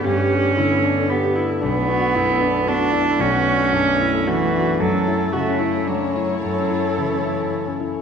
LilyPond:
<<
  \new Staff \with { instrumentName = "Viola" } { \time 3/4 \key fis \phrygian \tempo 4 = 113 g'4 e'8 d'8 g'8 e'8 | d'8 fis'8 e'8 d'8 fis'8 e'8 | fis'4 d'8 e'8 fis'4 | a'4 fis'8 e'8 d'8 cis'8 |
a'2~ a'8 r8 | }
  \new Staff \with { instrumentName = "Grand piano" } { \time 3/4 \key fis \phrygian <g, a'>16 b16 d'16 a'16 d16 b16 d'16 a'8 b16 d'16 a'16 | b,,16 b16 d'16 a'16 fis,16 b16 d'16 a'8 b16 d'16 a'16 | b,,16 b16 d'16 a'16 fis,16 b16 d'16 a'8 b16 d'16 a'16 | fis,16 cis'16 e'16 a'16 cis16 cis'16 e'16 a'8 cis'16 e'16 a'16 |
fis,16 cis'16 e'16 a'16 cis16 cis'16 e'16 a'8 cis'16 e'16 a'16 | }
  \new Staff \with { instrumentName = "String section" } { \time 3/4 \key fis \phrygian << { <d b'>2.~ | <d b'>2.~ | <d b'>2. | <e' cis''>2.~ |
<e' cis''>2. | } \\ { a2. | a2.~ | a2.~ | a2.~ |
a2. | } >> }
  \new Staff \with { instrumentName = "Cello" } { \time 3/4 \key fis \phrygian cis'2 b8 r8 | b2 d'4 | cis'2 e4 | fis4 a4 fis4 |
fis4 e4. r8 | }
>>